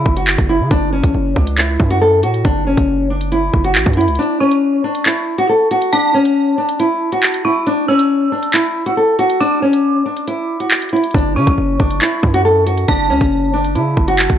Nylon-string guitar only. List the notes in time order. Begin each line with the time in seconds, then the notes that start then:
Already playing: E4
0.17 F#4
0.49 E4
0.71 D4
0.93 C#4
1.36 D4
1.58 E4
1.91 F#4
2.01 A4
2.23 F#4
2.45 D4
2.67 C#4
3.10 D4
3.32 E4
3.65 F#4
3.97 E4
4.19 D4
4.41 C#4
4.84 D4
5.06 E4
5.38 F#4
5.49 A4
5.71 F#4
5.93 D4
6.14 C#4
6.58 D4
6.80 E4
7.12 F#4
7.45 E4
7.67 D4
7.88 C#4
8.32 D4
8.54 E4
8.86 F#4
8.97 A4
9.19 F#4
9.41 D4
9.62 C#4
10.06 D4
10.28 E4
10.60 F#4
10.93 E4
11.15 D4
11.36 C#4
11.80 D4
12.01 E4
12.34 F#4
12.45 A4
12.67 F#4
12.88 D4
13.10 C#4
13.54 D4
13.75 E4
14.08 F#4